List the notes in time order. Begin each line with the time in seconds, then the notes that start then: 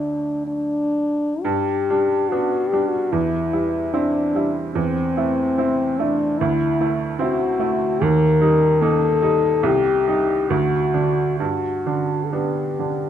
Already playing: D2 F#3 A3 D4
0.47 D4
1.43 G2 G4
1.90 G3 D4
2.29 B3 D4 F#4
2.69 G3 G4
2.73 D4
2.90 F#4
3.12 E2 E4
3.53 G3 E4
3.94 C4 D4 E4
4.35 G3 E4
4.75 E2 C4
5.17 A3 E4
5.58 C4 E4
5.99 A3 D4 E4
6.39 D2 E4
6.80 A3 E4
7.19 C4 E4 F#4
7.59 A3 E4
8.01 D#2 A#4
8.41 G3 D#4
8.81 A#3 D#4 A4
9.22 G3 D#4
9.63 C2 G4
10.07 G3 D#4
10.50 D2 F#4
10.94 D3 D4
11.40 G2 F#4
11.86 D3 D4
12.25 A4
12.31 B3 D4 G4
12.79 D3 D4